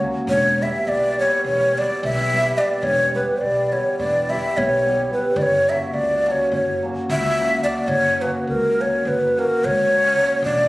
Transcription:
0.02 F#3 A#3 C#4 F#4
0.27 E1 C#5
0.60 G3 B3 E4 G4 E5
0.87 B1 D5
1.17 G3 B3 E4 G4 C#5
1.44 E1 C#5
1.76 G3 B3 E4 G4 D5
2.03 B1 E5
2.33 G3 B3 E4 G4
2.57 G3 B3 E4 G4 D5
2.83 E1 C#5
3.14 G3 B3 E4 G4 B4
3.41 B1 D5
3.72 G3 B3 E4 G4 C#5
3.99 E1 D5
4.29 G3 B3 E4 G4 E5
4.57 B1 C#5
4.86 G3 B3 E4 G4
5.11 G3 B3 E4 G4 B4
5.36 F#1 D5
5.42 C#5
5.69 F#3 A#3 C#4 F#4 E5
5.93 C#2 D5
6.26 F#3 A#3 C#4 F#4 D5
6.31 C#5
6.51 F#1 C#5
6.83 F#3 A#3 C#4 F#4
7.09 C#2 E5
7.39 F#3 A#3 C#4 F#4
7.64 F#3 A#3 C#4 F#4 D5
7.88 F#1 C#5
8.21 F#3 A#3 C#4 F#4 B4
8.47 C#2 A#4
8.79 F#3 A#3 C#4 F#4 C#5
9.05 F#1 B4
9.37 F#3 A#3 C#4 F#4 A#4
9.64 C#2 C#5
9.93 F#3 A#3 C#4 F#4
10.15 F#3 A#3 C#4 F#4
10.42 E1 D5

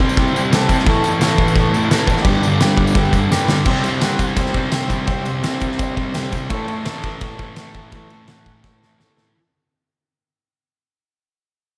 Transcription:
Already playing: C3 G3 C4
0.01 tambourine
0.09 tambourine
0.17 E4 G4 C5, kick, crash
0.28 tambourine
0.34 C4, tambourine
0.38 G3
0.45 tambourine
0.52 C3 G3 E4 G4 A4, snare, tambourine, crash
0.56 C4
0.61 tambourine
0.69 G3 C4, kick, tambourine
0.79 snare
0.85 A2 E3 E4 A4, kick, crash
0.89 A3 C#5
0.95 tambourine
1.02 A3, tambourine
1.07 E3
1.12 tambourine
1.20 A2 E3 E4 A4 C#5, snare, tambourine, crash
1.24 A3
1.38 kick, tambourine
1.48 tambourine
1.56 E4 A4, kick, tambourine, crash
1.61 C#5
1.65 tambourine
1.73 A3, tambourine
1.77 E3
1.82 tambourine
1.89 A2 E3 E4 A4 B4, snare, tambourine, crash
1.93 A3
2.07 A3, kick, tambourine
2.12 E3
2.17 snare
2.22 G2 G4 B4 D5, kick, tambourine, crash
2.27 D3 G3
2.35 tambourine
2.43 G3, tambourine
2.47 D3
2.52 tambourine
2.60 G2 D3 G4 B4 D5, snare, tambourine, crash
2.65 G3
2.77 kick
2.87 tambourine
2.95 G4 B4 E5, kick, crash
3.05 tambourine
3.13 G3, kick, tambourine
3.17 D3
3.31 G2 D3 G4 B4 D5, snare, tambourine
3.35 G3
3.42 tambourine
3.48 G3, snare, tambourine
3.52 D3
3.59 tambourine
3.65 C3 G4 C5 E5, kick, crash
3.70 G3 C4
3.84 C4, ride, tambourine
3.89 G3
4.01 C3 G3 G4 C5 F#5, snare, ride, tambourine
4.06 C4
4.19 kick, ride, tambourine
4.36 G4 C5 E5, kick, ride, tambourine
4.46 snare
4.54 C4, kick, ride
4.58 G3
4.71 C3 G3 G4 C5 E5, snare, ride, tambourine
4.76 C4
4.89 G3 C4, kick, ride, tambourine
5.06 C3 G3 G4 C5 E5, kick, ride
5.11 C4
5.25 C4, ride, tambourine
5.30 G3
5.41 C3 G4 C5 E5, snare, ride, tambourine
5.46 G3 C4
5.60 kick, ride, tambourine
5.72 snare
5.78 G4 C5 E5, kick, ride, tambourine
5.96 C4, kick, ride
6.01 G3
6.14 C3 G3 C4 G4 C5 E5, snare, ride, tambourine
6.32 C4, kick, ride, tambourine
6.37 G3
6.50 A2 E3 A4 C#5 E5, kick, ride
6.54 A3
6.68 A3, ride
6.73 E3
6.85 A2 E3 A4 C#5 E5, snare, ride
6.89 A3
7.03 kick, ride
7.21 A4 C#5 E5, kick, ride
7.38 A3, kick, ride
7.42 E3
7.55 A2 E3 A4 C#5 E5, snare, ride
7.59 A3
7.74 A3, kick, ride
7.78 E3
7.91 A2 E3, kick, ride
7.95 A3 A4 C#5 E5
8.10 A3, ride
8.14 E3
8.27 A2 E3 A4 C#5 F#5, snare, ride
8.32 A3
8.46 kick, ride
8.64 A4 C#5 E5, kick, snare
8.81 A3, snare
8.86 E3
8.99 A2 E3 A4 C#5 E5, snare
9.04 A3
9.17 A3, snare
9.21 E3

